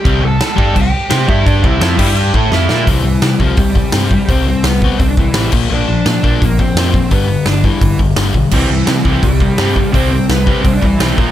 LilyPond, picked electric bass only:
\new Staff \with { instrumentName = "Picked electric bass" } { \clef bass \time 4/4 \key c \major \tempo 4 = 170 c,8 c,8 r8 g,8 c,8 r8 c8 g,8~ | g,8 c,8 f,8 g,4 a,8 f,8 bes,8 | c,8 c,8 c8 c,8 c,4 g,4 | c,4 c,4 c,8 c,8 a,,8 bes,,8 |
bes,,8 bes,,8 bes,8 bes,,8 bes,,4 f,4 | g,,4 g,,4 g,,8 g,,8 g,,8 b,,8 | c,8 c,8 c8 c,8 c,4 g,4 | c,4 c,4 c,8 c,8 b,,8 bes,,8 | }